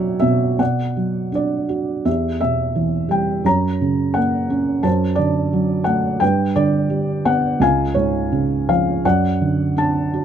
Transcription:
0.00 0.20 B2 medium
0.00 0.62 F#3 medium
0.00 0.62 D4 medium
0.00 0.56 F#4 medium
0.00 0.24 C#5 medium
0.00 0.16 D5 medium
0.00 0.20 E5 loud
0.00 0.59 F#5 medium
0.00 0.62 G5 medium
0.20 0.57 B2 medium
0.20 0.60 E5 medium
0.59 2.02 B2 soft
0.59 1.34 D5 soft
0.59 1.30 F#5 medium
0.97 2.03 F#3 soft
1.32 2.03 D4 soft
1.32 2.09 D5 medium
1.69 2.04 F#4 soft
2.05 3.41 E2 medium
2.05 3.42 G4 soft
2.05 2.39 E5 medium
2.41 3.43 B2 soft
2.41 3.06 E5 medium
2.75 3.43 E3 soft
3.09 3.44 G3 medium
3.09 3.43 G5 medium
3.44 4.79 F#2 medium
3.44 4.81 C#5 soft
3.44 4.18 A#5 medium
3.81 4.81 C#3 soft
4.14 4.83 A#3 medium
4.14 4.85 F#5 medium
4.50 4.83 C#4 medium
4.83 6.17 F#2 medium
4.83 6.18 C5 medium
4.83 5.15 A5 medium
5.16 6.19 D3 soft
5.16 5.82 D5 medium
5.53 6.20 F#3 medium
5.84 6.20 A3 medium
5.84 6.18 F#5 medium
6.20 7.57 G2 medium
6.20 7.58 B4 medium
6.20 6.53 G5 medium
6.56 7.58 D3 soft
6.56 7.28 D5 medium
6.90 7.59 G3 medium
7.25 7.60 B3 medium
7.25 7.59 F#5 medium
7.60 8.99 C#2 medium
7.60 8.67 F5 medium
7.60 7.94 G#5 medium
7.94 9.01 G#2 soft
7.94 8.69 C#5 medium
8.32 9.02 C#3 medium
8.69 9.03 F3 medium
8.69 9.06 F5 medium
9.05 10.25 F#2 medium
9.05 10.25 D5 medium
9.05 9.73 F#5 medium
9.41 10.25 D3 soft
9.76 10.25 D4 medium
9.76 10.25 A5 medium
10.14 10.25 F#4 soft

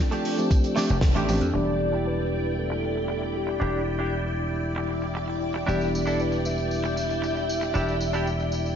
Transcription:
0.00 0.35 F3 medium
0.00 0.35 A3 medium
0.00 0.35 C4 medium
0.00 0.36 D4 medium
0.00 1.51 D4 medium
0.00 0.36 F4 medium
0.00 1.51 A4 medium
0.00 1.51 G5 medium
0.11 0.44 A3 medium
0.11 0.45 D4 medium
0.11 0.45 G4 loud
0.11 closed hi-hat medium
0.11 tambourine soft
0.25 open hi-hat loud
0.25 tambourine medium
0.38 0.87 F3 medium
0.38 0.87 A3 medium
0.38 0.87 C4 medium
0.38 0.87 D4 medium
0.38 0.87 G4 medium
0.38 closed hi-hat medium
0.38 tambourine soft
0.51 kick loud
0.51 closed hi-hat loud
0.51 tambourine soft
0.64 closed hi-hat medium
0.64 tambourine soft
0.76 0.96 A3 loud
0.76 0.96 D4 loud
0.76 0.97 G4 loud
0.76 snare medium
0.76 open hi-hat loud
0.76 tambourine medium
0.89 1.15 F1 medium
0.89 closed hi-hat medium
0.89 tambourine soft
1.01 kick loud
1.01 snare loud
1.01 open hi-hat medium
1.01 tambourine medium
1.15 1.25 A1 medium
1.15 1.41 A3 medium
1.15 1.42 D4 medium
1.15 1.42 G4 medium
1.15 closed hi-hat medium
1.15 tambourine soft
1.28 1.38 A1 medium
1.28 1.46 F3 medium
1.28 1.46 A3 medium
1.28 1.46 C4 medium
1.28 1.46 D4 medium
1.28 1.46 G4 medium
1.28 open hi-hat medium
1.28 tambourine medium
1.41 1.51 F2 medium
1.41 closed hi-hat medium
1.41 tambourine soft
1.53 3.59 E1 medium
1.53 5.65 E3 medium
1.53 5.65 G3 medium
1.53 5.65 B3 medium
1.53 1.73 D4 loud
1.53 5.65 D4 medium
1.53 1.74 E4 medium
1.53 8.76 E4 medium
1.53 5.66 G4 medium
1.53 1.74 G4 loud
1.53 8.76 D5 medium
1.53 2.08 D5 loud
1.53 8.76 G5 medium
1.92 2.06 D4 medium
1.92 2.06 E4 medium
1.92 2.07 G4 medium
2.07 2.60 B4 loud
2.19 muted clean electric guitar stroke soft
2.59 3.38 A4 medium
2.70 muted clean electric guitar stroke medium
2.83 muted clean electric guitar stroke soft
2.96 muted clean electric guitar stroke soft
3.08 muted clean electric guitar stroke medium
3.22 muted clean electric guitar stroke soft
3.36 3.88 G4 medium
3.47 muted clean electric guitar stroke medium
3.60 5.66 E1 medium
3.60 3.80 D4 loud
3.60 3.81 E4 medium
3.60 3.81 G4 loud
3.99 4.12 D4 medium
3.99 4.13 E4 medium
3.99 4.13 G4 medium
4.25 muted clean electric guitar stroke soft
4.76 muted clean electric guitar stroke loud
4.89 muted clean electric guitar stroke soft
5.02 muted clean electric guitar stroke soft
5.15 muted clean electric guitar stroke medium
5.28 muted clean electric guitar stroke soft
5.54 muted clean electric guitar stroke medium
5.67 7.73 E1 medium
5.67 8.76 E3 medium
5.67 8.76 G3 medium
5.67 8.76 B3 medium
5.67 5.87 D4 loud
5.67 8.76 D4 medium
5.67 5.87 E4 medium
5.67 5.88 G4 loud
5.67 8.76 G4 medium
5.67 6.22 D5 loud
5.67 tambourine soft
5.81 tambourine soft
5.95 tambourine medium
6.06 6.19 D4 medium
6.06 6.20 E4 medium
6.06 6.20 A4 medium
6.06 tambourine soft
6.19 6.45 B4 medium
6.19 tambourine soft
6.32 muted clean electric guitar stroke soft
6.32 tambourine soft
6.45 8.76 E5 loud
6.45 tambourine medium
6.58 tambourine soft
6.71 tambourine soft
6.84 muted clean electric guitar stroke loud
6.84 tambourine soft
6.97 muted clean electric guitar stroke soft
6.97 tambourine medium
7.09 muted clean electric guitar stroke soft
7.09 tambourine soft
7.22 muted clean electric guitar stroke medium
7.22 tambourine soft
7.35 muted clean electric guitar stroke soft
7.35 tambourine soft
7.49 tambourine medium
7.61 muted clean electric guitar stroke medium
7.61 tambourine soft
7.74 8.76 E1 medium
7.74 7.94 D4 loud
7.74 7.94 E4 medium
7.74 7.95 G4 loud
7.74 tambourine soft
7.88 tambourine soft
8.01 tambourine medium
8.13 8.27 D4 medium
8.13 8.27 E4 medium
8.13 8.28 G4 medium
8.13 tambourine soft
8.27 tambourine medium
8.39 muted clean electric guitar stroke soft
8.39 tambourine soft
8.52 tambourine medium
8.66 tambourine soft

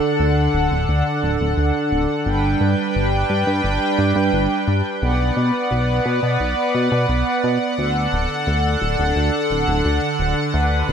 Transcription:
0.00 2.22 D3 medium
0.00 2.22 D4 medium
0.00 2.22 A4 medium
0.00 2.22 F#5 medium
0.19 0.49 D2 medium
0.54 0.68 D1 medium
0.71 0.86 D1 loud
0.89 1.03 D2 medium
1.23 1.38 D1 medium
1.40 1.55 D1 loud
1.58 1.72 D2 loud
1.92 2.06 D1 loud
2.26 2.55 G1 medium
2.26 4.99 G3 medium
2.26 4.99 D4 medium
2.26 4.99 B4 medium
2.26 4.99 G5 medium
2.61 2.75 G2 medium
2.95 3.24 G1 medium
3.30 3.44 G2 medium
3.47 3.62 G2 loud
3.64 3.79 G1 medium
3.99 4.13 G2 medium
4.16 4.30 G2 loud
4.33 4.48 G1 loud
4.68 4.82 G2 loud
5.02 5.31 B1 loud
5.02 7.75 B3 medium
5.02 7.75 B4 medium
5.02 7.75 D5 medium
5.02 10.93 F#5 medium
5.37 5.51 B2 medium
5.71 6.00 B1 medium
6.06 6.20 B2 medium
6.23 6.37 B2 loud
6.40 6.55 B1 medium
6.75 6.89 B2 medium
6.92 7.06 B2 loud
7.09 7.24 B1 medium
7.44 7.58 B2 loud
7.78 8.07 D2 loud
7.78 10.93 D3 medium
7.78 10.93 D4 medium
7.78 10.51 A4 medium
8.13 8.27 D1 medium
8.47 8.76 D2 medium
8.82 8.96 D1 medium
8.99 9.13 D1 loud
9.16 9.31 D2 medium
9.51 9.65 D1 medium
9.68 9.82 D1 loud
9.85 10.00 D2 medium
10.20 10.34 D1 loud
10.54 10.83 D2 loud
10.54 10.93 B4 medium
10.89 10.93 D1 medium

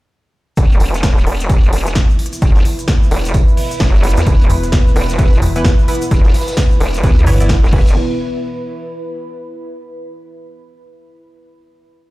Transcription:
0.57 0.79 E1 loud
0.57 7.69 B3 medium
0.57 7.72 E4 medium
0.57 7.69 E4 medium
0.57 7.69 B4 medium
0.57 kick loud
0.57 closed hi-hat medium
0.57 tambourine medium
0.57 shaker medium
0.72 shaker soft
0.80 1.25 E1 loud
0.80 open hi-hat loud
0.80 tambourine medium
0.94 snare soft
0.94 closed hi-hat medium
0.94 shaker medium
1.03 kick loud
1.03 snare loud
1.03 closed hi-hat medium
1.03 tambourine medium
1.03 shaker medium
1.17 closed hi-hat soft
1.17 shaker soft
1.27 1.71 E1 loud
1.27 7.73 B4 medium
1.27 cross-stick medium
1.27 open hi-hat medium
1.37 7.73 B5 medium
1.37 closed hi-hat medium
1.37 shaker medium
1.49 kick loud
1.49 closed hi-hat medium
1.49 tambourine medium
1.49 shaker medium
1.63 snare soft
1.63 shaker soft
1.73 1.94 E1 loud
1.73 open hi-hat loud
1.73 tambourine medium
1.86 snare medium
1.86 closed hi-hat medium
1.86 shaker medium
1.95 kick loud
1.95 snare loud
1.95 tambourine medium
1.95 shaker medium
2.09 shaker soft
2.19 open hi-hat medium
2.19 tambourine medium
2.26 closed hi-hat medium
2.33 closed hi-hat medium
2.33 shaker medium
2.42 2.54 E1 loud
2.42 kick loud
2.42 closed hi-hat medium
2.42 tambourine medium
2.42 shaker medium
2.55 2.64 G1 loud
2.55 snare soft
2.55 shaker soft
2.65 open hi-hat loud
2.65 tambourine medium
2.79 closed hi-hat medium
2.79 shaker medium
2.88 kick loud
2.88 snare loud
2.88 closed hi-hat medium
2.88 tambourine loud
2.88 shaker medium
3.03 shaker soft
3.11 3.33 E1 loud
3.11 open hi-hat loud
3.11 tambourine medium
3.25 closed hi-hat medium
3.25 shaker medium
3.34 kick loud
3.34 closed hi-hat medium
3.34 tambourine medium
3.34 shaker medium
3.48 shaker soft
3.57 open hi-hat medium
3.57 open hi-hat loud
3.71 closed hi-hat medium
3.71 shaker medium
3.80 4.15 F#1 medium
3.80 kick loud
3.80 snare loud
3.80 tambourine medium
3.80 shaker medium
3.95 shaker soft
4.03 open hi-hat loud
4.03 tambourine medium
4.10 closed hi-hat medium
4.17 4.25 E2 loud
4.17 snare soft
4.17 closed hi-hat medium
4.17 shaker medium
4.27 4.48 E1 medium
4.27 kick loud
4.27 closed hi-hat medium
4.27 tambourine medium
4.27 shaker medium
4.41 shaker soft
4.50 4.94 E1 loud
4.50 open hi-hat loud
4.50 tambourine medium
4.63 snare soft
4.63 closed hi-hat medium
4.63 shaker medium
4.72 kick loud
4.72 snare loud
4.72 closed hi-hat medium
4.72 tambourine medium
4.72 shaker medium
4.87 closed hi-hat soft
4.87 shaker soft
4.96 5.41 E1 loud
4.96 cross-stick medium
4.96 open hi-hat loud
4.96 tambourine medium
5.09 closed hi-hat medium
5.09 shaker medium
5.18 5.34 E3 medium
5.18 5.34 B3 medium
5.18 5.34 E4 medium
5.18 5.34 B4 loud
5.18 kick loud
5.18 closed hi-hat medium
5.18 tambourine medium
5.18 shaker medium
5.33 snare soft
5.33 shaker soft
5.42 5.64 E1 loud
5.42 open hi-hat loud
5.42 tambourine medium
5.56 5.66 E3 medium
5.56 5.66 B3 medium
5.56 5.66 E4 medium
5.56 5.66 B4 loud
5.56 snare soft
5.56 closed hi-hat medium
5.56 shaker medium
5.65 kick loud
5.65 snare loud
5.65 tambourine medium
5.65 shaker medium
5.78 shaker soft
5.88 6.03 E3 medium
5.88 6.03 B3 medium
5.88 6.03 E4 medium
5.88 6.03 B4 medium
5.88 open hi-hat loud
5.88 tambourine medium
5.95 closed hi-hat medium
6.02 closed hi-hat medium
6.02 shaker medium
6.11 6.23 E1 loud
6.11 kick loud
6.11 closed hi-hat medium
6.11 tambourine medium
6.11 shaker medium
6.24 6.33 G1 loud
6.24 snare soft
6.24 shaker soft
6.34 snare loud
6.34 open hi-hat loud
6.34 tambourine medium
6.41 snare medium
6.41 tambourine medium
6.47 snare medium
6.47 closed hi-hat medium
6.47 tambourine medium
6.47 shaker medium
6.52 snare medium
6.52 tambourine medium
6.57 kick loud
6.57 snare loud
6.57 closed hi-hat medium
6.57 tambourine medium
6.57 shaker medium
6.71 shaker soft
6.80 7.02 E1 loud
6.80 open hi-hat loud
6.80 tambourine medium
6.94 closed hi-hat medium
6.94 shaker medium
7.04 7.25 D2 loud
7.04 7.18 E3 medium
7.04 7.18 B3 medium
7.04 7.18 E4 medium
7.04 7.18 B4 loud
7.04 kick loud
7.04 closed hi-hat medium
7.04 tambourine medium
7.04 shaker medium
7.17 shaker soft
7.26 7.61 G1 loud
7.26 7.38 E3 loud
7.26 7.38 B3 medium
7.26 7.38 E4 medium
7.26 7.38 C#5 loud
7.26 open hi-hat medium
7.26 open hi-hat loud
7.40 7.60 E3 medium
7.40 7.60 B3 medium
7.40 7.60 E4 medium
7.40 7.60 D5 medium
7.40 closed hi-hat medium
7.40 shaker medium
7.49 kick loud
7.49 snare loud
7.49 closed hi-hat soft
7.49 tambourine medium
7.49 shaker medium
7.64 7.72 E1 loud
7.64 shaker soft
7.73 7.94 E1 medium
7.73 7.91 E3 medium
7.73 7.91 B3 medium
7.73 7.94 B3 medium
7.73 7.91 E4 medium
7.73 9.53 E4 medium
7.73 7.94 E4 medium
7.73 7.91 B4 loud
7.73 7.94 B4 medium
7.73 kick loud
7.73 crash medium
7.81 9.54 B4 medium
7.87 shaker medium
8.12 9.77 B5 medium

